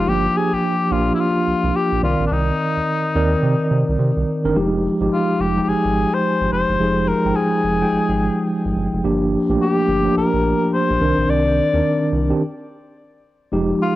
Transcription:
Already playing: cor anglais F4
0.07 analog synth bass G1, tine electric piano F3 A#3 D4 G4, cor anglais G4
0.37 cor anglais G#4
0.52 analog synth bass A#1, cor anglais G4
0.91 analog synth bass A#1, tine electric piano F3 A#3 D4 F4, cor anglais F4
1.15 cor anglais E4
1.20 cor anglais F4
1.47 analog synth bass C2
1.64 analog synth bass C2
1.76 cor anglais G4
1.92 analog synth bass A#1
2.03 analog synth bass C2, tine electric piano D#3 C4 A#4 D5, cor anglais F4
2.20 analog synth bass A#1
2.27 cor anglais D4
2.31 analog synth bass C2, cor anglais D#4
2.77 analog synth bass D#2
3.15 analog synth bass D#2, tine electric piano D#3 C4 A#4 D5
3.43 analog synth bass C3
3.71 analog synth bass C3
3.89 analog synth bass C2
3.99 analog synth bass C3
4.17 analog synth bass C2
4.44 analog synth bass G1, tine electric piano D#3 C4 D4 A#4
4.55 analog synth bass F1, tine electric piano F3 G#3 D#4 G4
5.00 analog synth bass G#1, tine electric piano F3 G#3 D#4 G4
5.13 cor anglais F4
5.39 analog synth bass F1, cor anglais G4
5.57 tine electric piano F3 G#3 D#4 G5
5.62 cor anglais G4
5.67 analog synth bass G#1, cor anglais G#4
5.85 analog synth bass G#1
6.14 cor anglais C5
6.41 analog synth bass G#1
6.52 analog synth bass F1, cor anglais C5
6.69 analog synth bass G1
6.79 analog synth bass F1, tine electric piano F3 G#3 D#4 G#4
7.08 cor anglais A#4
7.25 analog synth bass G#1, tine electric piano F3 G#3 D#4 G5
7.36 cor anglais G#4
7.64 analog synth bass F1
7.81 tine electric piano F3 G#3 D#4 G5
7.91 analog synth bass G#1
8.09 analog synth bass G#1
8.65 analog synth bass G#1
8.76 analog synth bass G1
8.93 analog synth bass F1
9.04 analog synth bass G1, tine electric piano F3 A#3 D4 G4
9.49 analog synth bass A#1, tine electric piano F3 A3 D4 G4
9.56 tine electric piano A#3
9.62 cor anglais G4
9.88 analog synth bass G1
10.05 tine electric piano F3 A#3 D4 G4
10.16 analog synth bass A#1, cor anglais A#4
10.33 analog synth bass A#1
10.74 cor anglais C5
10.90 analog synth bass A#1
11.00 analog synth bass C2, tine electric piano D#3 C4 D4 A#4
11.18 analog synth bass A#1
11.28 analog synth bass C2, cor anglais D5
11.73 analog synth bass D#2, tine electric piano D#3 C4 D4 A#4
12.12 analog synth bass C2
12.29 tine electric piano D#3 C4 D4 G4
13.52 analog synth bass F1, tine electric piano F3 G#3 D#4 G4
13.83 cor anglais F4

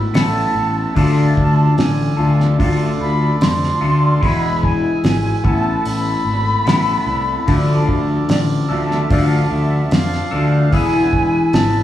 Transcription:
Already playing: clean electric guitar A3 B3 E4 A4, transistor combo organ B3 E4 A4 E5
0.13 fingered electric bass A1, clean electric guitar A3 B3 E4 A4, flute A5, snare, open hi-hat
0.55 fingered electric bass A1
0.95 fingered electric bass D2, clean electric guitar D3 A3 D4 F4 A4, transistor combo organ F4 D5, flute A5, kick, open hi-hat
1.37 fingered electric bass D2, kick
1.77 fingered electric bass A1, flute G#5, snare, open hi-hat
2.17 fingered electric bass D2, clean electric guitar D3 A3 D4 F4 A4
2.40 snare
2.58 fingered electric bass D2, clean electric guitar D3 A3 D4 F4 A4, transistor combo organ A4 A5, kick, open hi-hat
3.00 fingered electric bass D2, flute B5
3.41 fingered electric bass F2, flute C6, snare, open hi-hat
3.63 snare
3.81 fingered electric bass D2, clean electric guitar D3 A3 D4 F4 A4
4.21 fingered electric bass E1, clean electric guitar E3 G#3 B3 E4 G#4, transistor combo organ E4 G#4 B4 G#5, flute B5, kick, open hi-hat
4.63 flute G#5, kick
5.03 fingered electric bass G#1, snare, open hi-hat
5.43 fingered electric bass A1, clean electric guitar A3 B3 E4 A4, transistor combo organ A4 A5, flute A5, kick
5.85 fingered electric bass A1, flute B5, open hi-hat
6.24 fingered electric bass G#1
6.66 fingered electric bass A1, clean electric guitar A3 B3 E4 A4, snare, open hi-hat
7.06 fingered electric bass C2
7.46 fingered electric bass D2, clean electric guitar D3 F3 A3 D4 A4, transistor combo organ F4 D5, kick, open hi-hat
7.88 fingered electric bass D2, kick
8.28 fingered electric bass A1, flute D5, snare, open hi-hat
8.69 fingered electric bass D2, clean electric guitar D3 F3 A3 D4 A4, flute E5
8.91 snare
9.10 fingered electric bass D2, clean electric guitar D3 F3 A3 D4 A4, transistor combo organ A4, flute F5, kick, open hi-hat
9.50 fingered electric bass D2, flute E5
9.91 fingered electric bass F2, flute F5, snare, open hi-hat
10.13 snare
10.31 fingered electric bass D2, clean electric guitar D3 F3 A3 D4 A4
10.72 fingered electric bass E1, clean electric guitar E3 B3 E4 G#4, transistor combo organ G#3 E4 B4 B5, flute G#5, kick, open hi-hat
11.13 kick
11.53 fingered electric bass G#1, flute A5, snare, open hi-hat

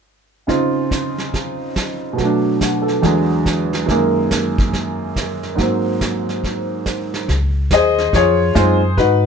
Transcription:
0.47 upright piano C#3 C4 D#4 F4, brush sweep, kick, snare
0.91 kick, snare, hi-hat pedal
1.18 snare
1.34 brush sweep, kick, snare
1.76 kick, snare, hi-hat pedal
2.13 upright piano B2
2.17 upright piano F#3 A3, brush sweep, kick, snare
2.24 upright piano D4
2.61 upright piano F#4, kick, snare, hi-hat pedal
2.82 upright piano A4
2.88 snare
3.03 upright piano E2 D3 F#3 G#3, brush sweep, kick, snare
3.46 kick, snare, hi-hat pedal
3.73 snare
3.86 upright piano F#2 D#3 G#3, brush sweep, kick, snare
3.91 upright piano A#3
4.31 kick, snare, hi-hat pedal
4.58 kick, snare
4.73 brush sweep, kick, snare
5.16 kick, snare, hi-hat pedal
5.43 snare
5.55 upright piano G#2 F#3 A#3, brush sweep, kick, snare
5.61 upright piano C4
6.01 kick, snare, hi-hat pedal
6.29 snare
6.44 brush sweep, kick, snare
6.86 kick, snare, hi-hat pedal
7.14 snare
7.28 upright bass C#2, brush sweep, kick, snare
7.71 upright bass D#2, upright piano G#4 C5 D#5, kick, snare, hi-hat pedal
7.98 snare
8.13 upright bass F2, upright piano F4 G#4 C#5, brush sweep, kick, snare
8.55 upright bass F#2, upright piano G#3 C4 D#4 F4 C5, kick, snare, hi-hat pedal
8.97 upright bass G#2, upright piano D#4 F#4 B4, brush sweep, kick, snare

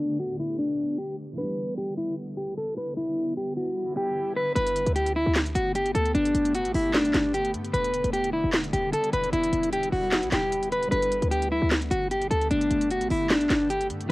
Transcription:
Already playing: ambient pad D3 A3 B3 G4, felt piano G3 D4 A4 B4, clean electric guitar D4
0.19 clean electric guitar F#4
0.40 clean electric guitar E4
0.59 clean electric guitar D4
0.98 clean electric guitar G4
1.33 felt piano E3 B3
1.38 ambient pad D3 G3 E4, felt piano D4, clean electric guitar B4
1.42 felt piano G3
1.78 clean electric guitar G4
1.97 clean electric guitar E4
2.37 clean electric guitar G4
2.58 clean electric guitar A4
2.78 clean electric guitar B4
2.97 clean electric guitar E4
3.37 clean electric guitar G4
3.57 clean electric guitar F#4
3.97 clean electric guitar G4
4.36 clean electric guitar B4
4.55 808-style bass G1, ambient pad D3 A3 B3 G4, clean electric guitar B4, closed hi-hat
4.67 closed hi-hat
4.76 closed hi-hat
4.86 808-style bass D2, closed hi-hat
4.96 clean electric guitar G4, closed hi-hat
5.06 closed hi-hat
5.16 clean electric guitar E4
5.26 808-style bass D2
5.35 snare, clap, closed hi-hat
5.46 closed hi-hat
5.55 808-style bass G1, clean electric guitar F#4, closed hi-hat
5.75 clean electric guitar G4, closed hi-hat
5.86 closed hi-hat
5.95 808-style bass D2, clean electric guitar A4, closed hi-hat
6.06 closed hi-hat
6.15 808-style bass G1, clean electric guitar D4, closed hi-hat
6.25 closed hi-hat
6.35 808-style bass F#1, closed hi-hat
6.45 closed hi-hat
6.55 clean electric guitar F#4, closed hi-hat
6.65 808-style bass A1, closed hi-hat
6.74 808-style bass G1, clean electric guitar E4, open hi-hat
6.94 clean electric guitar D4, snare, clap, closed hi-hat
7.05 closed hi-hat
7.14 808-style bass G1, snare, clap, closed hi-hat
7.34 clean electric guitar G4, closed hi-hat
7.45 closed hi-hat
7.54 808-style bass G2, closed hi-hat
7.65 closed hi-hat
7.73 808-style bass E1, ambient pad G3 E4, clean electric guitar B4, closed hi-hat
7.84 closed hi-hat
7.94 closed hi-hat
8.04 808-style bass E1, closed hi-hat
8.13 clean electric guitar G4, closed hi-hat
8.24 closed hi-hat
8.33 clean electric guitar E4
8.44 808-style bass E1
8.53 snare, clap, closed hi-hat
8.64 closed hi-hat
8.73 808-style bass E1, clean electric guitar G4, closed hi-hat
8.93 clean electric guitar A4, closed hi-hat
9.04 closed hi-hat
9.13 808-style bass E1, clean electric guitar B4, closed hi-hat
9.24 closed hi-hat
9.33 808-style bass E1, clean electric guitar E4, closed hi-hat
9.43 closed hi-hat
9.53 808-style bass E1, closed hi-hat
9.63 closed hi-hat
9.73 clean electric guitar G4, closed hi-hat
9.83 closed hi-hat
9.92 808-style bass E1, clean electric guitar F#4, open hi-hat
10.12 snare, clap, closed hi-hat
10.23 808-style bass B1, closed hi-hat
10.32 808-style bass E1, clean electric guitar G4, snare, clap, closed hi-hat
10.52 closed hi-hat
10.63 closed hi-hat
10.72 clean electric guitar B4, closed hi-hat
10.83 closed hi-hat
10.87 felt piano G3 D4, clean electric guitar B4
10.92 808-style bass G1, ambient pad D3 A3 G4, felt piano A4, closed hi-hat
10.97 felt piano B4
11.02 closed hi-hat
11.12 closed hi-hat
11.22 808-style bass D2, closed hi-hat
11.31 clean electric guitar G4, closed hi-hat
11.42 closed hi-hat
11.52 clean electric guitar E4
11.62 808-style bass D2
11.71 snare, clap, closed hi-hat
11.82 closed hi-hat
11.91 808-style bass G1, clean electric guitar F#4, closed hi-hat
12.11 clean electric guitar G4, closed hi-hat
12.22 closed hi-hat
12.31 808-style bass D2, clean electric guitar A4, closed hi-hat
12.41 closed hi-hat
12.51 808-style bass G1, clean electric guitar D4, closed hi-hat
12.61 closed hi-hat
12.71 808-style bass F#1, closed hi-hat
12.81 closed hi-hat
12.90 clean electric guitar F#4, closed hi-hat
13.01 808-style bass A1, closed hi-hat
13.10 808-style bass G1, clean electric guitar E4, open hi-hat
13.30 clean electric guitar D4, snare, clap, closed hi-hat
13.41 closed hi-hat
13.50 808-style bass G1, snare, clap, closed hi-hat
13.70 clean electric guitar G4, closed hi-hat
13.81 closed hi-hat
13.90 808-style bass G2, closed hi-hat
14.00 closed hi-hat
14.06 felt piano E3

